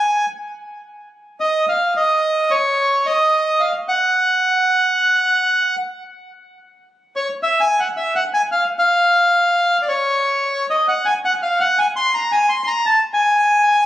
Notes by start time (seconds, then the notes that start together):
Already playing: G#5
1.40 D#5
1.69 F5
1.97 D#5
2.51 C#5
3.06 D#5
3.60 F5
3.88 F#5
7.16 C#5
7.43 E5
7.61 G#5
7.80 F#5
7.97 E5
8.15 F#5
8.34 G#5
8.52 F5
8.79 F5
9.82 D5
9.89 C#5
10.70 D#5
10.88 F#5
11.05 G#5
11.25 F#5
11.42 F5
11.60 F#5
11.79 G#5
11.96 C6
12.14 A#5
12.32 G#5
12.49 C6
12.64 A#5 C6
12.86 A5
13.14 G#5